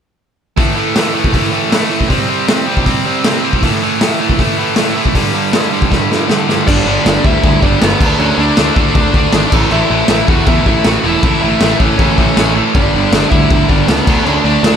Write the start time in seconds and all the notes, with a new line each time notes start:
0.58 A2 E3 A3, kick, open hi-hat
0.76 A2 E3 A3
0.95 A2 E3 A3, snare, open hi-hat
1.13 A2 E3 A3
1.24 kick
1.33 A2 E3 A3, kick, open hi-hat
1.52 A2 E3 A3
1.71 A2 E3 A3, snare, open hi-hat
1.90 A2 E3 A3
2.01 kick
2.09 C3 G3 C4, kick, open hi-hat
2.28 C3 G3 C4
2.47 C3 G3 C4, snare, open hi-hat
2.67 C3 G3 C4
2.77 kick
2.86 C3 G3 C4, kick, open hi-hat
3.05 C3 G3 C4
3.24 C3 G3 C4, snare, open hi-hat
3.43 C3 G3 C4
3.53 kick
3.62 A2 E3 A3, kick, open hi-hat
3.81 A2 E3 A3
4.00 A2 E3 A3, snare, open hi-hat
4.19 A2 E3 A3
4.29 kick
4.38 A2 E3 A3, kick, open hi-hat
4.58 A2 E3 A3
4.76 A2 E3 A3, snare, open hi-hat
4.96 A2 E3 A3
5.05 kick
5.15 G2 D3 G3, kick, open hi-hat
5.34 G2 D3 G3
5.53 G2 D3 G3, snare, open hi-hat
5.72 G2 D3 G3
5.82 kick
5.90 G2 D3 G3, kick, snare
6.09 G2 D3 G3, snare
6.28 G2 D3 G3, snare
6.47 G2 D3 G3, snare
6.66 G1 G2 D3 G3 D4 D5, kick, crash
6.85 G1 G2 D3 G3
7.04 G1 G2 D3 G3, snare, crash
7.22 D2 G2 D3 G3 E4 E5, kick
7.43 D2 G2 D3 G3, kick, crash
7.61 G1 G2 D3 G3 D4 D5, kick
7.81 G1 G2 D3 G3 B3 B4, snare, crash
8.00 D2 D3 A3 D4, kick, crash
8.18 D2 D3 A3 C#4 D4 C#5, crash
8.37 D2 D3 A3 D4 D5
8.56 D2 D3 A3 D4, snare, crash
8.75 D2 D3 A3 D4, kick
8.94 D2 D3 A3 D4, kick, crash
9.13 D2 D3 A3 D4, kick
9.32 G#1 D3 A3 D4, snare, crash
9.52 A1 A2 E3 A3, kick, crash
9.71 A1 A2 E3 A3 E4 E5, crash
9.89 A1 A2 E3 A3
10.08 A1 A2 E3 A3, snare, crash
10.27 E2 A2 E3 A3 F#4 F#5, kick
10.46 E2 A2 E3 A3 E4 E5, kick, crash
10.65 A1 A2 E3 A3 E4 E5, kick
10.84 A1 A2 E3 A3 F#4 F#5, snare, crash
11.03 E1 A2 E3 A3 E4 E5
11.22 A1 A2 E3 A3, kick, crash
11.41 A1 A2 E3 A3 E4 E5
11.60 A1 A2 E3 A3, snare, crash
11.79 A1 A2 E3 A3 C#4 C#5, kick
11.97 A1 A2 E3 A3 C#4 C#5, kick, crash
12.17 A1 A2 E3 A3, kick
12.35 A1 A2 E3 A3, snare, crash
12.54 A2 E3 A3
12.74 G1 G2 D3 G3 D4 D5, kick, crash
12.93 G1 G2 D3 G3
13.12 G1 G2 D3 G3, snare, crash
13.31 D2 G2 D3 G3 E4 E5, kick
13.50 D2 G2 D3 G3, kick, crash
13.69 G1 G2 D3 G3 D4 D5, kick
13.87 C#2 G2 D3 G3 B3 B4, snare, crash
14.07 D2 D3 A3 D4, kick, crash
14.25 D2 D3 A3 C#4 D4 C#5, crash
14.44 D2 D3 A3 D4 D5
14.63 D2 D3 A3 D4, snare, crash